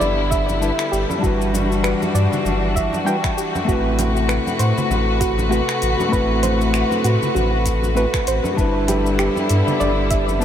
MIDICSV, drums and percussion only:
0, 0, Header, 1, 2, 480
1, 0, Start_track
1, 0, Tempo, 612245
1, 963, Time_signature, 4, 2, 24, 8
1, 8190, End_track
2, 0, Start_track
2, 0, Title_t, "Drums"
2, 0, Note_on_c, 9, 63, 82
2, 10, Note_on_c, 9, 82, 47
2, 77, Note_off_c, 9, 63, 0
2, 88, Note_off_c, 9, 82, 0
2, 244, Note_on_c, 9, 36, 107
2, 249, Note_on_c, 9, 82, 83
2, 323, Note_off_c, 9, 36, 0
2, 328, Note_off_c, 9, 82, 0
2, 380, Note_on_c, 9, 63, 63
2, 385, Note_on_c, 9, 82, 33
2, 458, Note_off_c, 9, 63, 0
2, 464, Note_off_c, 9, 82, 0
2, 487, Note_on_c, 9, 82, 45
2, 566, Note_off_c, 9, 82, 0
2, 619, Note_on_c, 9, 26, 83
2, 625, Note_on_c, 9, 82, 32
2, 698, Note_off_c, 9, 26, 0
2, 703, Note_off_c, 9, 82, 0
2, 731, Note_on_c, 9, 82, 69
2, 809, Note_off_c, 9, 82, 0
2, 860, Note_on_c, 9, 63, 88
2, 868, Note_on_c, 9, 82, 32
2, 938, Note_off_c, 9, 63, 0
2, 946, Note_off_c, 9, 82, 0
2, 964, Note_on_c, 9, 36, 103
2, 970, Note_on_c, 9, 82, 45
2, 1042, Note_off_c, 9, 36, 0
2, 1049, Note_off_c, 9, 82, 0
2, 1109, Note_on_c, 9, 82, 30
2, 1188, Note_off_c, 9, 82, 0
2, 1207, Note_on_c, 9, 63, 84
2, 1213, Note_on_c, 9, 82, 82
2, 1285, Note_off_c, 9, 63, 0
2, 1291, Note_off_c, 9, 82, 0
2, 1348, Note_on_c, 9, 82, 32
2, 1427, Note_off_c, 9, 82, 0
2, 1444, Note_on_c, 9, 26, 72
2, 1450, Note_on_c, 9, 82, 42
2, 1523, Note_off_c, 9, 26, 0
2, 1528, Note_off_c, 9, 82, 0
2, 1586, Note_on_c, 9, 63, 64
2, 1587, Note_on_c, 9, 82, 29
2, 1664, Note_off_c, 9, 63, 0
2, 1665, Note_off_c, 9, 82, 0
2, 1687, Note_on_c, 9, 82, 73
2, 1766, Note_off_c, 9, 82, 0
2, 1821, Note_on_c, 9, 64, 74
2, 1826, Note_on_c, 9, 82, 34
2, 1899, Note_off_c, 9, 64, 0
2, 1904, Note_off_c, 9, 82, 0
2, 1921, Note_on_c, 9, 63, 84
2, 1929, Note_on_c, 9, 82, 43
2, 2000, Note_off_c, 9, 63, 0
2, 2007, Note_off_c, 9, 82, 0
2, 2164, Note_on_c, 9, 36, 58
2, 2169, Note_on_c, 9, 82, 79
2, 2242, Note_off_c, 9, 36, 0
2, 2247, Note_off_c, 9, 82, 0
2, 2297, Note_on_c, 9, 63, 74
2, 2305, Note_on_c, 9, 82, 29
2, 2375, Note_off_c, 9, 63, 0
2, 2384, Note_off_c, 9, 82, 0
2, 2409, Note_on_c, 9, 82, 46
2, 2487, Note_off_c, 9, 82, 0
2, 2540, Note_on_c, 9, 36, 102
2, 2541, Note_on_c, 9, 26, 74
2, 2546, Note_on_c, 9, 82, 32
2, 2618, Note_off_c, 9, 36, 0
2, 2619, Note_off_c, 9, 26, 0
2, 2624, Note_off_c, 9, 82, 0
2, 2650, Note_on_c, 9, 82, 69
2, 2729, Note_off_c, 9, 82, 0
2, 2785, Note_on_c, 9, 63, 87
2, 2787, Note_on_c, 9, 82, 31
2, 2863, Note_off_c, 9, 63, 0
2, 2865, Note_off_c, 9, 82, 0
2, 2884, Note_on_c, 9, 36, 112
2, 2891, Note_on_c, 9, 82, 44
2, 2962, Note_off_c, 9, 36, 0
2, 2969, Note_off_c, 9, 82, 0
2, 3126, Note_on_c, 9, 42, 86
2, 3127, Note_on_c, 9, 63, 91
2, 3131, Note_on_c, 9, 82, 75
2, 3204, Note_off_c, 9, 42, 0
2, 3205, Note_off_c, 9, 63, 0
2, 3210, Note_off_c, 9, 82, 0
2, 3265, Note_on_c, 9, 82, 32
2, 3344, Note_off_c, 9, 82, 0
2, 3364, Note_on_c, 9, 26, 67
2, 3370, Note_on_c, 9, 82, 40
2, 3443, Note_off_c, 9, 26, 0
2, 3448, Note_off_c, 9, 82, 0
2, 3502, Note_on_c, 9, 63, 63
2, 3507, Note_on_c, 9, 82, 27
2, 3580, Note_off_c, 9, 63, 0
2, 3585, Note_off_c, 9, 82, 0
2, 3602, Note_on_c, 9, 42, 77
2, 3607, Note_on_c, 9, 82, 69
2, 3680, Note_off_c, 9, 42, 0
2, 3686, Note_off_c, 9, 82, 0
2, 3743, Note_on_c, 9, 64, 77
2, 3745, Note_on_c, 9, 82, 31
2, 3822, Note_off_c, 9, 64, 0
2, 3823, Note_off_c, 9, 82, 0
2, 3847, Note_on_c, 9, 63, 76
2, 3851, Note_on_c, 9, 82, 43
2, 3926, Note_off_c, 9, 63, 0
2, 3929, Note_off_c, 9, 82, 0
2, 4083, Note_on_c, 9, 36, 102
2, 4083, Note_on_c, 9, 42, 82
2, 4089, Note_on_c, 9, 82, 70
2, 4161, Note_off_c, 9, 36, 0
2, 4162, Note_off_c, 9, 42, 0
2, 4167, Note_off_c, 9, 82, 0
2, 4218, Note_on_c, 9, 63, 69
2, 4225, Note_on_c, 9, 82, 31
2, 4296, Note_off_c, 9, 63, 0
2, 4303, Note_off_c, 9, 82, 0
2, 4329, Note_on_c, 9, 82, 43
2, 4407, Note_off_c, 9, 82, 0
2, 4460, Note_on_c, 9, 26, 76
2, 4465, Note_on_c, 9, 82, 30
2, 4538, Note_off_c, 9, 26, 0
2, 4544, Note_off_c, 9, 82, 0
2, 4562, Note_on_c, 9, 42, 74
2, 4568, Note_on_c, 9, 82, 65
2, 4641, Note_off_c, 9, 42, 0
2, 4646, Note_off_c, 9, 82, 0
2, 4701, Note_on_c, 9, 63, 85
2, 4707, Note_on_c, 9, 82, 31
2, 4779, Note_off_c, 9, 63, 0
2, 4785, Note_off_c, 9, 82, 0
2, 4801, Note_on_c, 9, 36, 105
2, 4807, Note_on_c, 9, 82, 41
2, 4880, Note_off_c, 9, 36, 0
2, 4885, Note_off_c, 9, 82, 0
2, 5041, Note_on_c, 9, 42, 84
2, 5045, Note_on_c, 9, 63, 75
2, 5046, Note_on_c, 9, 82, 73
2, 5119, Note_off_c, 9, 42, 0
2, 5123, Note_off_c, 9, 63, 0
2, 5125, Note_off_c, 9, 82, 0
2, 5184, Note_on_c, 9, 82, 31
2, 5262, Note_off_c, 9, 82, 0
2, 5283, Note_on_c, 9, 26, 69
2, 5288, Note_on_c, 9, 82, 41
2, 5361, Note_off_c, 9, 26, 0
2, 5367, Note_off_c, 9, 82, 0
2, 5416, Note_on_c, 9, 63, 64
2, 5425, Note_on_c, 9, 82, 27
2, 5495, Note_off_c, 9, 63, 0
2, 5503, Note_off_c, 9, 82, 0
2, 5523, Note_on_c, 9, 42, 78
2, 5528, Note_on_c, 9, 82, 71
2, 5601, Note_off_c, 9, 42, 0
2, 5607, Note_off_c, 9, 82, 0
2, 5661, Note_on_c, 9, 64, 74
2, 5665, Note_on_c, 9, 82, 31
2, 5740, Note_off_c, 9, 64, 0
2, 5743, Note_off_c, 9, 82, 0
2, 5759, Note_on_c, 9, 63, 76
2, 5771, Note_on_c, 9, 82, 44
2, 5837, Note_off_c, 9, 63, 0
2, 5850, Note_off_c, 9, 82, 0
2, 6002, Note_on_c, 9, 42, 83
2, 6003, Note_on_c, 9, 36, 57
2, 6008, Note_on_c, 9, 82, 73
2, 6081, Note_off_c, 9, 42, 0
2, 6082, Note_off_c, 9, 36, 0
2, 6086, Note_off_c, 9, 82, 0
2, 6136, Note_on_c, 9, 63, 62
2, 6145, Note_on_c, 9, 82, 29
2, 6215, Note_off_c, 9, 63, 0
2, 6223, Note_off_c, 9, 82, 0
2, 6247, Note_on_c, 9, 82, 41
2, 6325, Note_off_c, 9, 82, 0
2, 6380, Note_on_c, 9, 26, 73
2, 6380, Note_on_c, 9, 36, 100
2, 6386, Note_on_c, 9, 82, 30
2, 6459, Note_off_c, 9, 26, 0
2, 6459, Note_off_c, 9, 36, 0
2, 6464, Note_off_c, 9, 82, 0
2, 6484, Note_on_c, 9, 42, 83
2, 6490, Note_on_c, 9, 82, 63
2, 6563, Note_off_c, 9, 42, 0
2, 6568, Note_off_c, 9, 82, 0
2, 6617, Note_on_c, 9, 63, 88
2, 6626, Note_on_c, 9, 82, 30
2, 6695, Note_off_c, 9, 63, 0
2, 6705, Note_off_c, 9, 82, 0
2, 6724, Note_on_c, 9, 36, 105
2, 6730, Note_on_c, 9, 82, 41
2, 6803, Note_off_c, 9, 36, 0
2, 6808, Note_off_c, 9, 82, 0
2, 6961, Note_on_c, 9, 63, 79
2, 6964, Note_on_c, 9, 42, 92
2, 6969, Note_on_c, 9, 82, 70
2, 7039, Note_off_c, 9, 63, 0
2, 7042, Note_off_c, 9, 42, 0
2, 7048, Note_off_c, 9, 82, 0
2, 7106, Note_on_c, 9, 82, 32
2, 7184, Note_off_c, 9, 82, 0
2, 7204, Note_on_c, 9, 26, 72
2, 7210, Note_on_c, 9, 82, 41
2, 7283, Note_off_c, 9, 26, 0
2, 7288, Note_off_c, 9, 82, 0
2, 7339, Note_on_c, 9, 63, 64
2, 7347, Note_on_c, 9, 82, 25
2, 7417, Note_off_c, 9, 63, 0
2, 7425, Note_off_c, 9, 82, 0
2, 7443, Note_on_c, 9, 42, 88
2, 7449, Note_on_c, 9, 82, 70
2, 7522, Note_off_c, 9, 42, 0
2, 7527, Note_off_c, 9, 82, 0
2, 7581, Note_on_c, 9, 64, 85
2, 7587, Note_on_c, 9, 82, 28
2, 7659, Note_off_c, 9, 64, 0
2, 7665, Note_off_c, 9, 82, 0
2, 7687, Note_on_c, 9, 63, 86
2, 7689, Note_on_c, 9, 82, 39
2, 7765, Note_off_c, 9, 63, 0
2, 7767, Note_off_c, 9, 82, 0
2, 7923, Note_on_c, 9, 36, 101
2, 7923, Note_on_c, 9, 42, 87
2, 7928, Note_on_c, 9, 82, 73
2, 8001, Note_off_c, 9, 42, 0
2, 8002, Note_off_c, 9, 36, 0
2, 8007, Note_off_c, 9, 82, 0
2, 8061, Note_on_c, 9, 63, 60
2, 8065, Note_on_c, 9, 82, 30
2, 8139, Note_off_c, 9, 63, 0
2, 8144, Note_off_c, 9, 82, 0
2, 8165, Note_on_c, 9, 82, 43
2, 8190, Note_off_c, 9, 82, 0
2, 8190, End_track
0, 0, End_of_file